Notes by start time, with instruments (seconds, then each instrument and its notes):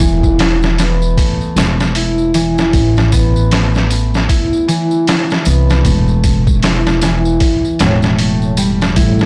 Already playing: upright bass E1, harp A3 B3 E4
0.00 harp E3, kick, open hi-hat
0.23 kick, tambourine
0.39 snare, open hi-hat, tambourine
0.62 snare, tambourine
0.78 harp B3, snare, open hi-hat, tambourine
1.02 tambourine
1.17 harp A3, kick, open hi-hat, tambourine
1.41 tambourine
1.56 upright bass E1, snare, open hi-hat, tambourine
1.80 snare, tambourine
1.95 harp E4, open hi-hat, tambourine
2.18 tambourine
2.34 harp E3, open hi-hat, tambourine
2.58 snare, tambourine
2.73 upright bass A1, kick, open hi-hat, tambourine
2.97 snare, tambourine
3.12 harp B3, kick, open hi-hat, tambourine
3.36 tambourine
3.51 harp A3, snare, open hi-hat, tambourine
3.75 snare, tambourine
3.90 open hi-hat, tambourine
4.14 snare, tambourine
4.29 harp E4, kick, open hi-hat, tambourine
4.53 tambourine
4.68 harp E3, open hi-hat, tambourine
4.91 tambourine
5.07 snare, open hi-hat, tambourine
5.30 snare, tambourine
5.45 upright bass C2, harp B3, open hi-hat, tambourine
5.70 snare, tambourine
5.85 upright bass E1, harp A3, kick, open hi-hat, tambourine
6.08 tambourine
6.24 kick, open hi-hat, tambourine
6.47 kick, tambourine
6.63 harp E4, snare, open hi-hat, tambourine
6.86 snare, tambourine
7.02 harp E3, snare, open hi-hat, tambourine
7.25 tambourine
7.40 kick, open hi-hat, tambourine
7.65 tambourine
7.79 upright bass E1, harp A2, snare, open hi-hat, tambourine
8.02 snare, tambourine
8.18 harp A3, open hi-hat, tambourine
8.42 tambourine
8.57 harp G3, open hi-hat, tambourine
8.82 snare, tambourine
8.96 upright bass A1, analog synth pad A3 A4, harp E4, kick, open hi-hat, tambourine
9.19 snare, tambourine